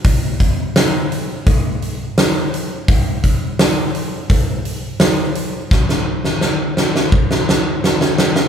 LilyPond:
\new DrumStaff \with { instrumentName = "Drums" } \drummode { \time 4/4 \tempo 4 = 85 <hho bd>8 <hho bd>8 <hho sn>8 hho8 <hho bd>8 hho8 <hho sn>8 hho8 | <hho bd>8 <hho bd>8 <hho sn>8 hho8 <hho bd>8 hho8 <hho sn>8 hho8 | <bd sn>16 sn8 sn16 sn8 sn16 sn16 bd16 sn16 sn8 sn16 sn16 sn16 sn16 | }